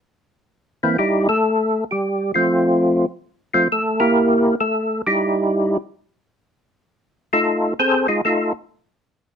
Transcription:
0.83 E3 A#3 C4 E4
0.98 G3 D#4 E4 G4
1.29 A3 A4
1.91 G3 G4
2.34 F3 A3 C4 F4
3.54 F3 A3 C4 F4
3.72 A3 A4
4.00 A#3 E4 G4 A#4
4.60 A3 A4
5.07 G3 D#4 E4 G4
7.33 A3 D#4 F4 A4
7.79 C4 G#4 A4 C5
8.08 G#3 D#4 F4 G#4
8.25 A3 D#4 F4 A4

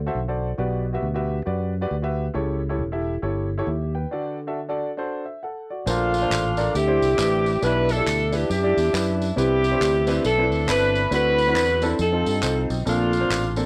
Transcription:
Already playing: D3
0.06 F#4 A4 C5 E5
0.15 B1
0.28 F#4 A4 C5 D5
0.58 B1 B2 F#4 G4 B4 D5
0.93 F#4 G4 B4 E5
1.02 D2
1.14 F#4 G4 B4 E5
1.45 F#2 F#4 G4 B4 D5
1.81 F#4 G4 B4 D5
1.91 D2
2.02 F#4 G4 B4 E5
2.34 C#2 C#3 E4 G4 A4 C#5
2.69 E4 G4 A4 C#5
2.79 E1
2.92 E4 G4 A4 E5
3.22 G1 E4 G4 A4 C#5
3.58 E4 G4 A4 C#5
3.67 D#2 G4 E5
3.95 B4 G5
4.11 D3 D4 F#4 A4 D5
4.47 D4 F#4 A4 E5
4.69 D4 F#4 A4 D5
4.97 D4 F#4 A4 C5
5.26 E5
5.43 A4 F#5
5.70 F#4 D5
5.86 A#1 A#2 A3 D4 F4 A4 A#4 C5, tambourine
6.14 tambourine
6.22 D4 A4 A#4 C5
6.30 A1, clap, tambourine
6.57 D4 A4 A#4 D5, tambourine
6.74 D2 D3 C4 E4 G4, tambourine
6.87 D4 E4 G4 C5
7.02 C2, tambourine
7.17 A1 D4 E4 G4 B4, clap, tambourine
7.46 tambourine
7.61 B1 B2 D4 E4 G4 B4, tambourine
7.89 D4 E4 A4, tambourine
7.97 D4 E4 G4 A4
8.06 D2, clap, tambourine
8.32 D4 E4 G4 B4, tambourine
8.50 F#2 D4 E4 G4, tambourine
8.63 D4 E4 G4 D5
8.77 E2, tambourine
8.93 F#2 D4 E4 G4 B4, clap, tambourine
9.22 tambourine
9.36 C2 C3 B3 C4 D4 E4 G4 B4, tambourine
9.64 tambourine
9.71 C4 D4 E4 C5
9.81 D2, clap, tambourine
10.07 C4 D4 E4 B4, tambourine
10.25 B1 D4 E4 A4, tambourine
10.38 C4 D4 E4 B4
10.52 D2, tambourine
10.67 G1 C4 D4 E4 A4 B4, clap, tambourine
10.95 tambourine
11.11 D2 D3 C4 D4 E4 F#4 B4, tambourine
11.39 tambourine
11.47 C4 D4 E4 F#4
11.55 E2, clap, tambourine
11.82 C4 D4 E4 A4, tambourine
11.99 F2 C4 D#4 A4, tambourine
12.12 C4 D#4 F4 A4
12.26 G2, tambourine
12.42 C2 C4 D#4 F4 C5, clap, tambourine
12.70 B1, tambourine
12.85 A#1 A#2 A3 A#3 C4 D4 F4 A4, tambourine
13.13 tambourine
13.20 A#3 C4 D4 C5
13.30 A1, clap, tambourine
13.56 A#3 C4 D4 A4, tambourine

